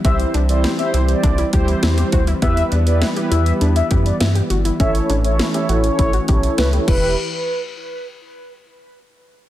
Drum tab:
CC |----------------|----------------|--------------x-|----------------|
HH |xxxxxxxxxxxxxxxx|xxxxxxxxxxxxxxxx|xxxxxxxxxxxxxx--|----------------|
SD |----o-------o---|----o-------o---|----o-------o---|----------------|
BD |o-------o-o---o-|o---------o-----|o-------o-o---o-|----------------|